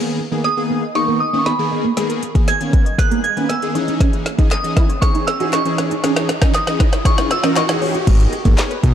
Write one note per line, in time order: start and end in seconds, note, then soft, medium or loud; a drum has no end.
0.00 0.19 D#3 medium
0.00 0.20 A#3 medium
0.00 0.20 B3 medium
0.00 0.20 G#4 loud
0.00 riser medium
0.06 0.15 A#4 medium
0.19 muted clean electric guitar stroke soft
0.31 0.49 D#3 medium
0.31 0.39 A#3 medium
0.31 0.49 A#3 medium
0.31 0.49 B3 medium
0.31 0.49 G#4 medium
0.31 0.40 G#5 loud
0.44 0.97 D#6 loud
0.44 snare medium
0.57 0.83 D#3 medium
0.57 0.83 A#3 medium
0.57 0.83 B3 medium
0.57 0.83 G#4 medium
0.57 0.65 G#5 medium
0.70 0.77 B3 medium
0.70 0.78 G#5 loud
0.82 0.91 D#5 medium
0.95 1.21 D#3 medium
0.95 1.21 A#3 medium
0.95 1.21 B3 medium
0.95 1.21 D#4 medium
0.95 1.04 G#4 medium
0.95 1.22 C#6 loud
0.95 snare medium
1.08 1.15 A#3 medium
1.08 1.16 A#4 medium
1.20 1.29 D#5 medium
1.20 1.39 D#6 medium
1.20 muted clean electric guitar stroke soft
1.33 1.51 D#3 medium
1.33 1.51 A#3 medium
1.33 1.51 B3 medium
1.33 1.40 C#4 medium
1.33 1.51 D#4 medium
1.33 1.42 G#5 medium
1.39 1.46 C#6 medium
1.46 1.53 B3 medium
1.46 1.54 G#5 loud
1.46 1.93 B5 medium
1.46 snare medium
1.59 1.85 D#3 medium
1.59 1.85 A#3 medium
1.59 1.85 B3 medium
1.59 1.85 G#4 medium
1.71 1.80 D#5 medium
1.71 muted clean electric guitar stroke soft
1.84 1.91 A#3 medium
1.97 2.23 D#3 medium
1.97 2.04 G#3 medium
1.97 2.23 A#3 medium
1.97 2.23 B3 medium
1.97 2.05 G#4 medium
1.97 2.23 G#4 medium
1.97 snare medium
1.97 closed hi-hat medium
2.09 2.18 A#4 medium
2.09 closed hi-hat medium
2.22 muted clean electric guitar stroke soft
2.22 closed hi-hat medium
2.35 2.52 D#3 medium
2.35 2.42 A#3 medium
2.35 2.53 A#3 medium
2.35 2.53 B3 medium
2.35 2.53 G#4 medium
2.35 2.43 G#5 loud
2.35 kick medium
2.35 closed hi-hat medium
2.48 2.56 G#5 medium
2.48 2.95 G#6 loud
2.48 snare medium
2.48 closed hi-hat medium
2.60 2.87 D#3 medium
2.60 2.87 A#3 medium
2.60 2.87 B3 medium
2.60 2.87 C#4 medium
2.60 closed hi-hat medium
2.73 2.80 B3 medium
2.73 kick loud
2.73 closed hi-hat medium
2.86 2.94 D#5 medium
2.86 closed hi-hat medium
2.98 3.25 D#3 medium
2.98 3.25 A#3 medium
2.98 3.25 B3 medium
2.98 3.07 G#4 medium
2.98 3.25 G#4 medium
2.98 3.25 F#6 loud
2.98 kick medium
2.98 snare medium
2.98 closed hi-hat medium
3.11 3.18 A#3 medium
3.11 3.20 A#4 medium
3.11 closed hi-hat medium
3.24 3.32 D#5 medium
3.24 3.48 G#6 loud
3.24 muted clean electric guitar stroke soft
3.24 closed hi-hat medium
3.37 3.54 D#3 medium
3.37 3.54 A#3 medium
3.37 3.54 B3 medium
3.37 3.44 C#4 medium
3.37 3.54 B4 medium
3.37 3.45 G#5 medium
3.37 closed hi-hat medium
3.49 3.57 B3 medium
3.49 3.58 G#5 loud
3.49 3.97 E6 medium
3.49 snare medium
3.49 closed hi-hat medium
3.62 3.75 D#3 medium
3.62 3.75 A#3 medium
3.62 3.75 B3 medium
3.62 3.74 G#4 medium
3.62 closed hi-hat medium
3.75 4.26 E3 medium
3.75 4.26 C#4 medium
3.75 4.26 D#4 medium
3.75 4.26 G#4 medium
3.75 3.83 C#5 medium
3.75 muted clean electric guitar stroke soft
3.75 closed hi-hat medium
3.88 3.95 C#4 medium
3.88 closed hi-hat medium
4.00 4.07 C#4 medium
4.00 4.09 C#4 medium
4.00 kick loud
4.00 snare medium
4.00 closed hi-hat medium
4.13 4.21 E4 medium
4.13 closed hi-hat medium
4.26 muted clean electric guitar stroke soft
4.26 snare medium
4.26 closed hi-hat medium
4.38 4.56 E3 medium
4.38 4.56 C#4 medium
4.38 4.46 D#4 medium
4.38 4.56 D#4 medium
4.38 4.56 G#4 medium
4.38 4.47 D#5 loud
4.38 kick medium
4.38 closed hi-hat medium
4.51 4.59 D#5 medium
4.51 5.04 D#6 medium
4.51 snare medium
4.51 clap medium
4.51 closed hi-hat medium
4.64 4.90 E3 medium
4.64 4.90 C#4 medium
4.64 4.90 D#4 medium
4.64 4.90 G#4 medium
4.64 4.72 D#5 medium
4.64 closed hi-hat medium
4.76 4.84 E4 medium
4.76 4.85 D#5 loud
4.76 kick loud
4.76 snare medium
4.76 closed hi-hat medium
4.89 4.98 C#5 medium
4.89 closed hi-hat medium
5.01 5.28 E3 medium
5.01 5.10 C#4 medium
5.01 5.28 C#4 medium
5.01 5.28 D#4 medium
5.01 5.28 G#4 medium
5.01 5.25 C#6 medium
5.01 kick medium
5.01 snare medium
5.01 closed hi-hat medium
5.15 5.22 D#4 medium
5.15 5.23 E4 medium
5.15 closed hi-hat medium
5.27 5.36 C#5 medium
5.27 5.53 E6 loud
5.27 muted clean electric guitar stroke soft
5.27 snare medium
5.27 closed hi-hat medium
5.40 5.58 E3 medium
5.40 5.58 C#4 medium
5.40 5.58 D#4 medium
5.40 5.47 F#4 medium
5.40 5.58 G#4 medium
5.40 5.48 D#5 medium
5.40 closed hi-hat medium
5.53 5.60 E4 medium
5.53 5.61 D#5 loud
5.53 6.00 C#6 medium
5.53 snare loud
5.53 clap loud
5.53 closed hi-hat medium
5.65 5.91 E3 medium
5.65 5.92 C#4 medium
5.65 5.92 D#4 medium
5.65 5.92 G#4 medium
5.65 closed hi-hat medium
5.78 5.87 C#5 medium
5.78 muted clean electric guitar stroke soft
5.78 snare medium
5.78 closed hi-hat medium
5.91 5.98 D#4 medium
5.91 closed hi-hat medium
6.03 6.30 E3 medium
6.03 6.30 C#4 medium
6.03 6.12 C#4 medium
6.03 6.11 C#4 medium
6.03 6.30 D#4 medium
6.03 6.30 G#4 medium
6.03 snare loud
6.03 closed hi-hat loud
6.16 6.25 E4 medium
6.16 snare loud
6.16 closed hi-hat medium
6.29 muted clean electric guitar stroke soft
6.29 snare loud
6.29 closed hi-hat medium
6.42 6.59 E3 medium
6.42 6.59 C#4 medium
6.42 6.49 C#4 medium
6.42 6.59 D#4 medium
6.42 6.59 G#4 medium
6.42 6.50 D#5 loud
6.42 kick medium
6.42 snare loud
6.42 closed hi-hat medium
6.54 6.63 D#5 medium
6.54 7.07 D#6 medium
6.54 snare loud
6.54 clap medium
6.54 closed hi-hat medium
6.67 6.93 E3 medium
6.67 6.93 C#4 medium
6.67 6.93 D#4 medium
6.67 6.94 G#4 medium
6.67 6.76 D#5 medium
6.67 snare loud
6.67 closed hi-hat medium
6.80 6.87 D#4 medium
6.80 6.88 D#5 loud
6.80 kick loud
6.80 snare loud
6.80 closed hi-hat medium
6.93 7.01 C#5 medium
6.93 snare loud
6.93 closed hi-hat medium
7.05 7.31 E3 medium
7.05 7.31 C#4 medium
7.05 7.14 C#4 medium
7.05 7.31 D#4 medium
7.05 7.31 G#4 medium
7.05 7.32 C#6 loud
7.05 kick loud
7.05 snare loud
7.05 closed hi-hat loud
7.18 7.25 C#4 medium
7.18 7.26 E4 medium
7.18 snare loud
7.18 closed hi-hat medium
7.31 7.39 C#5 medium
7.31 7.43 E6 loud
7.31 muted clean electric guitar stroke soft
7.31 snare loud
7.31 closed hi-hat medium
7.43 7.61 E3 medium
7.43 7.51 C#4 medium
7.43 7.61 C#4 medium
7.43 7.61 D#4 medium
7.43 7.61 A#4 medium
7.43 7.52 D#5 medium
7.43 snare loud
7.43 closed hi-hat medium
7.56 7.64 E4 medium
7.56 7.64 D#5 loud
7.56 8.04 C#6 medium
7.56 snare loud
7.56 clap loud
7.56 closed hi-hat medium
7.69 7.95 E3 medium
7.69 7.95 C#4 medium
7.69 7.95 D#4 medium
7.69 7.95 G#4 medium
7.69 snare loud
7.69 closed hi-hat medium
7.82 7.90 C#5 medium
7.82 muted clean electric guitar stroke soft
7.82 open hi-hat medium
7.94 8.02 F#4 medium
7.94 closed hi-hat medium
8.07 8.27 G#1 loud
8.07 8.14 G#3 medium
8.07 8.33 B3 medium
8.07 8.15 B3 medium
8.07 8.33 D#4 medium
8.07 8.33 G#4 medium
8.07 8.33 A#4 medium
8.07 8.33 D#5 medium
8.07 kick loud
8.07 closed hi-hat loud
8.07 crash loud
8.20 8.28 B3 medium
8.20 closed hi-hat medium
8.33 8.41 G#4 medium
8.33 muted clean electric guitar stroke soft
8.33 closed hi-hat medium
8.45 8.55 G#1 loud
8.45 8.52 A#3 medium
8.45 8.71 B3 medium
8.45 8.54 B3 medium
8.45 8.71 D#4 medium
8.45 8.71 G#4 medium
8.45 8.71 A#4 medium
8.45 8.71 C#5 loud
8.45 kick medium
8.45 closed hi-hat medium
8.58 8.66 G#4 medium
8.58 snare loud
8.58 clap medium
8.58 clap loud
8.58 closed hi-hat loud
8.71 8.79 B4 medium
8.71 closed hi-hat medium
8.83 8.94 B1 loud
8.83 8.94 B3 medium
8.83 8.91 B3 medium
8.83 8.94 D#4 medium
8.83 8.92 G#4 medium
8.83 8.94 G#4 medium
8.83 8.94 A#4 medium
8.83 8.94 D#5 loud
8.83 kick loud
8.83 closed hi-hat medium